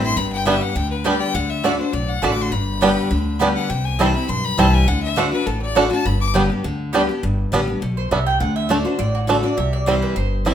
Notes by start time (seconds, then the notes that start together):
Already playing: A1 G2
0.02 C4 E4 C6
0.16 G1 G2 B5
0.32 G5
0.45 D3 G3 B3 D4 G4 D5 E5 G5
0.61 B3 G4 F#5
0.75 D2 D3 G5
0.91 B4
1.04 D3 G3 B3 D4 G4 D5 G5
1.20 G5
1.34 D2 D3 F#5
1.50 E5
1.63 D3 A3 D4 F#4 D5 F#5
1.79 D4 F#4 C5
1.93 B1 A2 D5
2.08 F#5
2.22 A1 D3 A3 D4 F#4 D5 F#5 A5
2.32 D6
2.42 C6
2.51 G1 G2 B5
2.81 D3 G3 B3 D4 G4 D5 G5
3.11 D2 D3
3.39 D3 G3 B3 D4 G4 D5 G5
3.56 F#5
3.70 C2 C3 G5
3.85 G#5
3.99 E3 G3 C4 E4 C5 G5 A5
4.14 C4 E4 B5
4.29 B1 G2 C6
4.44 B5
4.57 C2 E3 G3 C4 E4 C5 G5 A5
4.74 G#5
4.87 D2 D3 F#5
5.03 E5
5.16 D3 A3 D4 F#4 C5 D5 F#5
5.32 D4 F#4 B4
5.46 A1 A2 A4
5.62 D5
5.75 D3 A3 D4 F#4 D5 F#5
5.91 D4 F#4 A5
6.05 G1 G2 B5
6.21 D6
6.34 D3 G3 B3 D4 G4 D5 G5
6.50 B3 G4
6.64 D2 D3
6.93 D3 G3 B3 D4 G4 D5 G5
7.09 B3 G4
7.23 G1 G2
7.52 A1 D3 G3 B3 D4 G4
7.67 B3 G4
7.82 B1 B2
7.97 C5
8.11 C2 C3 G3 B3 D4 E5
8.27 G5
8.40 D2 D3 F#5
8.56 E5
8.69 D3 A3 D4 F#4 D5
8.84 D4 F#4 C5
8.99 A1 A2 D5
9.15 F#4
9.27 D3 A3 D4 F#4 A4
9.43 D4 F#4 D5
9.57 C2 C3 E5
9.73 D5
9.86 E3 G3 C4 E4 C5
10.02 B4
10.16 G1 G2 C5
10.45 E3 G3 C4 E4